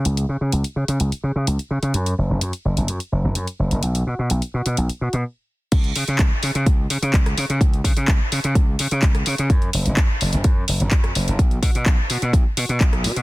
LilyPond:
<<
  \new Staff \with { instrumentName = "Slap bass" } { \clef bass \time 4/4 \key fis \mixolydian \tempo 4 = 127 cis,8 cis16 cis16 cis,16 r16 cis16 cis16 cis,16 r16 cis16 cis16 cis,16 r16 cis16 cis16 | fis,8 fis,,16 fis,,16 fis,16 r16 fis,,16 fis,,16 fis,16 r16 fis,,16 fis,,16 fis,16 r16 fis,,16 fis,,16 | b,,8 b,16 b,16 b,,16 r16 b,16 b,16 b,,16 r16 b,16 b,16 r4 | cis,8 cis16 cis16 cis,16 r16 cis16 cis16 cis,8 cis16 cis16 cis,8 cis16 cis16 |
cis,8 cis16 cis16 cis,16 r16 cis16 cis16 cis,8 cis16 cis16 cis,8 cis16 cis16 | fis,8 fis,,16 fis,,16 r8 fis,,16 fis,,16 r8 fis,,16 fis,,16 fis,8 fis,,16 fis,,16 | b,,8 b,16 b,16 b,,16 r16 b,16 b,16 b,,16 r16 b,16 b,16 b,,8 b,16 b,16 | }
  \new DrumStaff \with { instrumentName = "Drums" } \drummode { \time 4/4 hh16 hh8. hh16 hh8 hh16 hh16 hh8. hh16 hh8 hh16 | hh16 hh8. hh16 hh8 hh16 hh16 hh8. hh16 hh8 hh16 | hh16 hh8. hh16 hh8 hh16 hh16 hh8 hh16 r4 | <cymc hh bd>16 hh16 hho16 hh16 <hc hh bd>8 hho16 hh16 <hh bd>8 hho16 hh16 <hc hh bd>16 <hh ss>16 hho16 hh16 |
<hh bd>16 hh16 <hho bd>16 hh16 <hc hh bd>8 hho16 hh16 <hh bd>8 hho16 hh16 <hc hh bd>16 <hh ss>16 hho16 hh16 | <hh bd>16 hh16 hho16 hh16 <hc hh bd>8 hho16 hh16 <hh bd>8 hho16 hh16 <hc hh bd>16 <hh ss>16 hho16 hh16 | <hh bd>16 hh16 <hho bd>16 hh16 <hc hh bd>8 hho16 hh16 <hh bd>8 hho16 hh16 <hc hh bd>16 <hh ss>16 hho16 hh16 | }
>>